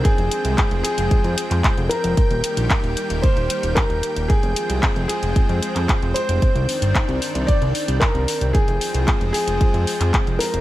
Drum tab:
HH |xxxxxxxxxxxxxxxx|xxxxxxxxxxxxxxxx|xxxxxxxxxxxxxxxx|xxoxxxoxxxoxxxox|
CP |----x------xx---|----x-------x---|----x------xx---|----x-------x---|
BD |o---o---o---o---|o---o---o---o---|o---o---o---o---|o---o---o---o---|

HH |xxoxxxoxxxoxxxox|
CP |----x------xx---|
BD |o---o---o---o---|